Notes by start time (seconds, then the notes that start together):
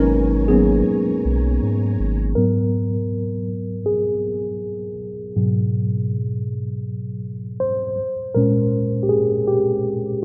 Already playing: G#1 F#3 G#3 A#3 B3 C#4 D#4 F#4 A#4 B4 C#5 G#5 A#5
0.48 F#3 A#3 B3 C#4 G#4
1.25 B1
1.62 G#2
2.00 G#1
2.35 G#2 F#3 B3 A#4
3.86 G#4
5.36 G#2 B2 F#3
7.60 C5
8.35 A#2 G#3 C#4 A#4
9.03 G4
9.09 G#4
9.47 G4